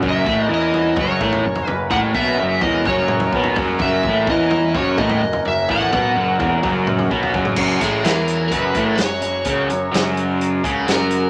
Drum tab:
CC |----------------|----------------|----------------|----------------|
HH |----------------|----------------|----------------|----------------|
SD |----------------|----------------|----------------|----------------|
T2 |----------o-----|----------o-----|----------o-----|--o-------o----o|
FT |o-----o-o--o-oo-|o-----o-o--o-oo-|o-----o-o--o-oo-|ooo---o-o--o-oo-|
BD |o-o-----o-o-----|o-o---o-o---o-o-|o-o-o---o-o-----|o-o---o-o---o-o-|

CC |x---------------|----------------|
HH |--x-x-x-x-x-x-x-|x-x-x-x-x-x-x-x-|
SD |----o-------o---|----o-------o---|
T2 |----------------|----------------|
FT |----------------|----------------|
BD |o-o-----o-o-----|o---------o-----|